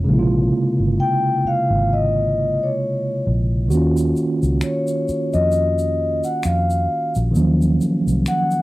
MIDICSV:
0, 0, Header, 1, 6, 480
1, 0, Start_track
1, 0, Tempo, 909091
1, 41, Time_signature, 4, 2, 24, 8
1, 4551, End_track
2, 0, Start_track
2, 0, Title_t, "Vibraphone"
2, 0, Program_c, 0, 11
2, 529, Note_on_c, 0, 79, 83
2, 772, Note_off_c, 0, 79, 0
2, 777, Note_on_c, 0, 77, 86
2, 1016, Note_off_c, 0, 77, 0
2, 1019, Note_on_c, 0, 75, 75
2, 1390, Note_on_c, 0, 73, 58
2, 1396, Note_off_c, 0, 75, 0
2, 1707, Note_off_c, 0, 73, 0
2, 2447, Note_on_c, 0, 73, 59
2, 2817, Note_on_c, 0, 75, 89
2, 2830, Note_off_c, 0, 73, 0
2, 3275, Note_off_c, 0, 75, 0
2, 3298, Note_on_c, 0, 78, 82
2, 3345, Note_off_c, 0, 78, 0
2, 3406, Note_on_c, 0, 77, 70
2, 3757, Note_off_c, 0, 77, 0
2, 4371, Note_on_c, 0, 78, 90
2, 4551, Note_off_c, 0, 78, 0
2, 4551, End_track
3, 0, Start_track
3, 0, Title_t, "Tine electric piano"
3, 0, Program_c, 1, 4
3, 0, Control_c, 1, 64, 127
3, 23, Note_on_c, 1, 49, 70
3, 34, Note_on_c, 1, 56, 52
3, 46, Note_on_c, 1, 58, 61
3, 56, Note_on_c, 1, 48, 65
3, 66, Note_on_c, 1, 64, 52
3, 92, Note_off_c, 1, 64, 0
3, 101, Note_on_c, 1, 65, 77
3, 1931, Note_off_c, 1, 49, 0
3, 1936, Note_off_c, 1, 56, 0
3, 1942, Note_off_c, 1, 58, 0
3, 1945, Note_on_c, 1, 51, 62
3, 1947, Note_off_c, 1, 48, 0
3, 1955, Note_on_c, 1, 66, 58
3, 1965, Note_on_c, 1, 58, 58
3, 1968, Control_c, 1, 64, 0
3, 1970, Note_off_c, 1, 65, 0
3, 1977, Note_on_c, 1, 61, 63
3, 1988, Note_on_c, 1, 65, 61
3, 2064, Control_c, 1, 64, 127
3, 3852, Note_off_c, 1, 51, 0
3, 3857, Note_off_c, 1, 66, 0
3, 3860, Note_on_c, 1, 51, 64
3, 3862, Note_off_c, 1, 58, 0
3, 3868, Note_off_c, 1, 61, 0
3, 3871, Note_on_c, 1, 54, 60
3, 3873, Note_off_c, 1, 65, 0
3, 3882, Note_on_c, 1, 58, 59
3, 3894, Note_on_c, 1, 61, 55
3, 3904, Note_on_c, 1, 53, 72
3, 4551, Note_off_c, 1, 51, 0
3, 4551, Note_off_c, 1, 53, 0
3, 4551, Note_off_c, 1, 54, 0
3, 4551, Note_off_c, 1, 58, 0
3, 4551, Note_off_c, 1, 61, 0
3, 4551, End_track
4, 0, Start_track
4, 0, Title_t, "Fingered electric bass"
4, 0, Program_c, 2, 33
4, 46, Note_on_c, 2, 34, 93
4, 263, Note_off_c, 2, 34, 0
4, 421, Note_on_c, 2, 31, 75
4, 514, Note_off_c, 2, 31, 0
4, 899, Note_on_c, 2, 32, 73
4, 1356, Note_off_c, 2, 32, 0
4, 1726, Note_on_c, 2, 34, 81
4, 1960, Note_off_c, 2, 34, 0
4, 1960, Note_on_c, 2, 39, 89
4, 2179, Note_off_c, 2, 39, 0
4, 2338, Note_on_c, 2, 37, 77
4, 2432, Note_off_c, 2, 37, 0
4, 2822, Note_on_c, 2, 41, 72
4, 3278, Note_off_c, 2, 41, 0
4, 3407, Note_on_c, 2, 41, 74
4, 3623, Note_off_c, 2, 41, 0
4, 3782, Note_on_c, 2, 34, 81
4, 3874, Note_off_c, 2, 34, 0
4, 3887, Note_on_c, 2, 39, 102
4, 4103, Note_off_c, 2, 39, 0
4, 4262, Note_on_c, 2, 36, 75
4, 4354, Note_off_c, 2, 36, 0
4, 4551, End_track
5, 0, Start_track
5, 0, Title_t, "Muted fingered electric bass strokes"
5, 764, Note_on_c, 9, 29, 37
5, 817, Note_off_c, 9, 29, 0
5, 2687, Note_on_c, 9, 29, 42
5, 2740, Note_off_c, 9, 29, 0
5, 4551, End_track
6, 0, Start_track
6, 0, Title_t, "Drums"
6, 1959, Note_on_c, 9, 82, 49
6, 2011, Note_off_c, 9, 82, 0
6, 2096, Note_on_c, 9, 82, 54
6, 2149, Note_off_c, 9, 82, 0
6, 2199, Note_on_c, 9, 82, 38
6, 2251, Note_off_c, 9, 82, 0
6, 2338, Note_on_c, 9, 82, 39
6, 2391, Note_off_c, 9, 82, 0
6, 2436, Note_on_c, 9, 26, 59
6, 2436, Note_on_c, 9, 82, 62
6, 2488, Note_off_c, 9, 26, 0
6, 2488, Note_off_c, 9, 82, 0
6, 2574, Note_on_c, 9, 82, 47
6, 2626, Note_off_c, 9, 82, 0
6, 2684, Note_on_c, 9, 82, 34
6, 2737, Note_off_c, 9, 82, 0
6, 2815, Note_on_c, 9, 82, 44
6, 2868, Note_off_c, 9, 82, 0
6, 2913, Note_on_c, 9, 82, 51
6, 2965, Note_off_c, 9, 82, 0
6, 3054, Note_on_c, 9, 82, 44
6, 3107, Note_off_c, 9, 82, 0
6, 3293, Note_on_c, 9, 82, 44
6, 3346, Note_off_c, 9, 82, 0
6, 3396, Note_on_c, 9, 26, 65
6, 3396, Note_on_c, 9, 82, 53
6, 3449, Note_off_c, 9, 26, 0
6, 3449, Note_off_c, 9, 82, 0
6, 3538, Note_on_c, 9, 82, 43
6, 3591, Note_off_c, 9, 82, 0
6, 3776, Note_on_c, 9, 82, 44
6, 3828, Note_off_c, 9, 82, 0
6, 3882, Note_on_c, 9, 82, 49
6, 3935, Note_off_c, 9, 82, 0
6, 4021, Note_on_c, 9, 82, 53
6, 4074, Note_off_c, 9, 82, 0
6, 4123, Note_on_c, 9, 82, 44
6, 4176, Note_off_c, 9, 82, 0
6, 4263, Note_on_c, 9, 82, 39
6, 4316, Note_off_c, 9, 82, 0
6, 4361, Note_on_c, 9, 26, 62
6, 4361, Note_on_c, 9, 82, 54
6, 4414, Note_off_c, 9, 26, 0
6, 4414, Note_off_c, 9, 82, 0
6, 4492, Note_on_c, 9, 82, 51
6, 4545, Note_off_c, 9, 82, 0
6, 4551, End_track
0, 0, End_of_file